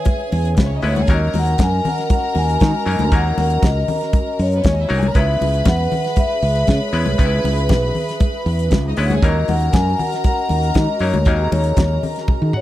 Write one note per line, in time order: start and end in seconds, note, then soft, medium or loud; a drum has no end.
0.00 8.92 C#4 medium
0.00 0.48 G#4 loud
0.00 1.05 G#4 medium
0.00 0.54 B4 medium
0.00 1.06 C#5 medium
0.00 1.05 E5 medium
0.00 0.48 G#5 loud
0.05 kick loud
0.05 closed hi-hat medium
0.05 muted conga medium
0.32 0.58 E2 loud
0.32 open hi-hat medium
0.32 muted conga soft
0.45 closed hi-hat medium
0.57 0.78 C#2 medium
0.57 0.66 B3 medium
0.57 0.66 B4 medium
0.57 kick loud
0.57 snare loud
0.57 closed hi-hat medium
0.57 high conga medium
0.66 0.74 C#4 medium
0.66 0.74 C#5 medium
0.75 0.83 D#4 medium
0.75 0.83 D#5 medium
0.82 1.03 D2 loud
0.82 1.00 G#3 medium
0.82 1.00 B3 medium
0.82 1.01 C#4 medium
0.82 0.92 E4 medium
0.82 1.01 E4 medium
0.82 1.01 B4 medium
0.82 0.92 E5 medium
0.82 open hi-hat medium
0.87 1.11 C#5 loud
0.92 1.00 F#4 medium
0.92 1.00 F#5 medium
0.96 1.08 G#4 medium
0.96 1.08 G#5 loud
0.96 closed hi-hat medium
0.96 high conga medium
1.07 1.29 D#2 loud
1.07 1.77 F#3 medium
1.07 1.77 A#3 medium
1.07 1.78 C#4 medium
1.07 1.78 D#4 medium
1.07 4.88 F#4 medium
1.07 4.47 A#4 loud
1.07 4.89 A#4 medium
1.07 1.78 A#4 medium
1.07 4.91 D#5 medium
1.07 4.47 A#5 loud
1.07 kick loud
1.07 closed hi-hat medium
1.14 1.35 D#5 loud
1.33 1.54 D#2 loud
1.33 open hi-hat medium
1.33 muted conga medium
1.39 1.62 F#5 loud
1.46 closed hi-hat medium
1.58 1.79 F#2 loud
1.58 kick loud
1.58 snare loud
1.58 closed hi-hat medium
1.58 high conga medium
1.63 1.87 G#5 loud
1.85 2.12 F#5 loud
1.85 open hi-hat medium
1.85 low conga medium
1.98 snare soft
1.98 closed hi-hat medium
2.10 2.38 F#5 loud
2.10 kick loud
2.10 closed hi-hat medium
2.10 muted conga medium
2.35 2.56 D#2 loud
2.35 3.15 G#5 loud
2.35 open hi-hat medium
2.35 muted conga soft
2.49 closed hi-hat soft
2.60 2.72 D#3 loud
2.60 kick loud
2.60 snare loud
2.60 closed hi-hat medium
2.60 high conga medium
2.86 2.97 F#2 loud
2.86 3.04 F#3 medium
2.86 3.04 A#3 medium
2.86 3.04 C#4 medium
2.86 3.04 D#4 medium
2.86 3.04 A#4 medium
2.86 open hi-hat medium
2.99 3.09 D2 loud
2.99 closed hi-hat medium
2.99 high conga medium
3.12 3.32 D#2 loud
3.12 3.81 F#3 medium
3.12 3.81 A#3 medium
3.12 3.81 C#4 medium
3.12 3.81 D#4 medium
3.12 3.81 A#4 medium
3.12 3.39 F#5 loud
3.12 kick loud
3.12 closed hi-hat medium
3.37 3.57 D#2 medium
3.37 3.62 F#5 loud
3.37 open hi-hat medium
3.37 muted conga medium
3.50 closed hi-hat medium
3.62 3.83 C#2 loud
3.62 4.42 D#5 loud
3.62 kick loud
3.62 snare loud
3.62 closed hi-hat medium
3.62 high conga medium
3.88 open hi-hat medium
3.88 low conga loud
4.01 snare soft
4.01 closed hi-hat medium
4.13 kick loud
4.13 closed hi-hat medium
4.13 muted conga medium
4.39 4.59 F#2 loud
4.39 5.13 C#5 loud
4.39 open hi-hat medium
4.52 4.64 B3 medium
4.52 4.64 B4 medium
4.52 closed hi-hat soft
4.64 4.85 D#2 medium
4.64 4.72 C#4 medium
4.64 4.73 C#5 medium
4.64 kick loud
4.64 snare loud
4.64 closed hi-hat medium
4.64 high conga medium
4.72 4.81 D#4 medium
4.72 4.81 D#5 medium
4.80 4.89 E4 medium
4.80 4.89 E5 medium
4.88 5.10 C2 loud
4.88 5.07 F#3 medium
4.88 5.07 A#3 medium
4.88 5.07 C#4 medium
4.88 5.07 D#4 medium
4.88 4.97 F#4 medium
4.88 5.07 A#4 medium
4.88 4.97 F#5 medium
4.88 open hi-hat medium
4.98 5.07 G#4 medium
4.98 5.07 G#5 medium
5.03 5.15 A#4 loud
5.03 closed hi-hat medium
5.03 high conga medium
5.07 5.15 A#5 loud
5.15 5.35 C#2 loud
5.15 5.84 G#3 medium
5.15 5.84 B3 medium
5.15 5.84 C#4 medium
5.15 5.84 E4 medium
5.15 9.18 G#4 medium
5.15 8.80 B4 loud
5.15 9.18 B4 medium
5.15 5.85 B4 medium
5.15 9.19 E5 medium
5.15 5.68 E5 medium
5.15 8.80 B5 loud
5.15 kick loud
5.15 closed hi-hat medium
5.41 5.61 C#2 medium
5.41 open hi-hat medium
5.41 muted conga medium
5.54 closed hi-hat medium
5.65 5.86 E2 medium
5.65 6.19 F#5 loud
5.65 kick loud
5.65 snare loud
5.65 closed hi-hat medium
5.65 high conga medium
5.92 open hi-hat medium
5.92 low conga medium
6.04 snare soft
6.04 closed hi-hat soft
6.16 6.70 E5 loud
6.16 kick loud
6.16 closed hi-hat medium
6.16 muted conga medium
6.42 6.63 C#2 loud
6.42 open hi-hat medium
6.56 closed hi-hat medium
6.67 6.79 C#3 loud
6.67 7.16 C#5 medium
6.67 kick loud
6.67 snare loud
6.67 closed hi-hat medium
6.67 high conga medium
6.93 7.04 E2 medium
6.93 7.11 G#3 medium
6.93 7.11 B3 medium
6.93 7.11 C#4 medium
6.93 7.11 E4 medium
6.93 7.11 B4 medium
6.93 open hi-hat medium
7.06 7.16 C2 loud
7.06 closed hi-hat medium
7.06 high conga medium
7.18 7.39 C#2 loud
7.18 7.87 G#3 medium
7.18 7.87 B3 medium
7.18 7.88 C#4 medium
7.18 7.25 D#4 medium
7.18 8.67 B4 medium
7.18 7.88 B4 medium
7.18 kick loud
7.18 closed hi-hat medium
7.26 7.91 E4 medium
7.44 7.70 C#2 loud
7.44 open hi-hat medium
7.44 muted conga medium
7.58 closed hi-hat soft
7.69 7.90 B1 loud
7.69 kick loud
7.69 snare loud
7.69 closed hi-hat medium
7.69 high conga medium
7.95 open hi-hat soft
7.95 low conga medium
8.09 snare soft
8.09 closed hi-hat medium
8.20 kick loud
8.20 closed hi-hat medium
8.20 muted conga medium
8.46 8.72 E2 loud
8.46 open hi-hat medium
8.59 closed hi-hat medium
8.71 8.92 C#2 loud
8.71 kick loud
8.71 snare loud
8.71 closed hi-hat medium
8.71 high conga medium
8.88 8.97 D#4 medium
8.88 8.97 D#5 medium
8.96 9.17 D2 loud
8.96 9.15 G#3 medium
8.96 9.15 B3 medium
8.96 9.15 C#4 medium
8.96 9.05 E4 medium
8.96 9.15 E4 medium
8.96 9.15 B4 medium
8.96 9.24 C#5 medium
8.96 9.05 E5 medium
8.96 open hi-hat medium
9.05 9.14 F#4 medium
9.05 9.14 F#5 medium
9.10 9.22 G#4 loud
9.10 9.22 G#5 medium
9.10 closed hi-hat medium
9.10 high conga medium
9.22 9.42 D#2 loud
9.22 9.29 E3 medium
9.22 9.91 A#3 medium
9.22 12.61 C#4 medium
9.22 9.92 C#4 medium
9.22 9.92 D#4 medium
9.22 12.61 F#4 medium
9.22 11.24 A#4 medium
9.22 12.61 A#4 loud
9.22 9.92 A#4 medium
9.22 12.61 D#5 medium
9.22 9.49 D#5 loud
9.22 12.61 A#5 loud
9.22 kick loud
9.22 closed hi-hat medium
9.29 9.94 F#3 medium
9.48 9.68 D#2 loud
9.48 9.74 F#5 loud
9.48 open hi-hat medium
9.48 muted conga medium
9.61 closed hi-hat medium
9.73 9.94 F#2 loud
9.73 9.99 G#5 loud
9.73 kick loud
9.73 snare loud
9.73 closed hi-hat medium
9.73 high conga medium
9.98 10.23 F#5 loud
9.98 open hi-hat medium
9.98 low conga medium
10.12 snare soft
10.12 closed hi-hat soft
10.24 10.71 F#5 loud
10.24 kick loud
10.24 closed hi-hat medium
10.24 muted conga medium
10.49 10.70 D#2 loud
10.49 open hi-hat medium
10.49 muted conga soft
10.63 closed hi-hat soft
10.74 10.86 D#3 loud
10.74 11.01 D#5 loud
10.74 kick loud
10.74 snare loud
10.74 closed hi-hat medium
10.74 high conga medium
10.99 11.11 F#2 medium
10.99 11.18 F#3 medium
10.99 11.18 A#3 medium
10.99 11.19 C#4 medium
10.99 11.19 D#4 medium
10.99 11.19 A#4 medium
10.99 11.27 C#5 medium
10.99 open hi-hat medium
11.14 11.26 D2 loud
11.14 closed hi-hat soft
11.14 high conga loud
11.25 11.46 D#2 loud
11.25 11.95 F#3 medium
11.25 11.95 A#3 medium
11.25 11.95 C#4 medium
11.25 11.96 D#4 medium
11.25 12.61 G#4 medium
11.25 11.96 A#4 medium
11.25 kick loud
11.25 closed hi-hat medium
11.52 11.72 D#2 loud
11.52 11.99 C#5 medium
11.52 open hi-hat medium
11.52 muted conga medium
11.64 closed hi-hat medium
11.77 11.97 D#2 medium
11.77 kick loud
11.77 snare loud
11.77 closed hi-hat medium
11.77 high conga medium
12.03 open hi-hat medium
12.03 low conga medium
12.16 snare soft
12.16 closed hi-hat soft
12.28 kick loud
12.28 high tom medium
12.28 muted conga medium
12.42 12.51 D#3 loud
12.53 12.61 C#5 loud
12.53 12.61 F#5 medium
12.53 mid tom medium